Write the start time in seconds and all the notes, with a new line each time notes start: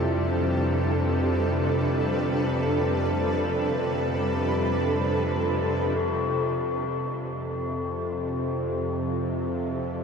Already playing: F2 C3 G3 D4 E4 A4 B4
5.96 F2 C3 A4
7.56 E4